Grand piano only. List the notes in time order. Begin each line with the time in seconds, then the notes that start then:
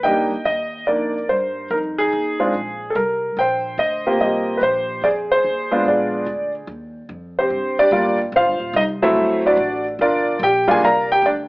0.03 A#3 D4 D#4 G4 D#5 G5
0.45 D#5
0.87 A#3 D4 D#4 A#4 D5
1.29 C5
1.71 D#4 A#4
1.98 D#4 G#4
2.40 G#3 C4 D4 F4
2.90 A4
2.96 A#4
3.39 C5 G5
3.79 D#5
4.07 A#3 C4 F4 G4
4.21 G4 D#5
4.57 B4
4.63 C5
5.04 G#4 D5
5.32 G#4 C5
5.71 G#3 B3 D4 F4
5.88 G#4 D5
7.39 C4 G4 C5
7.79 D4 G4 D5
7.92 G3 A#3 D4 F4
8.36 F4 C5 F5
8.76 D#4 D#5
9.02 F#3 A3 C4 E4 A4 C5 E5
9.46 D4 F#4 D5
10.01 D4 F4 A#4 D5
10.43 G4 G5
10.68 G3 A#3 D4 F4 G#4 G#5
10.84 A#4 D5 F5 A#5
11.12 G4 G5
11.26 D4 D5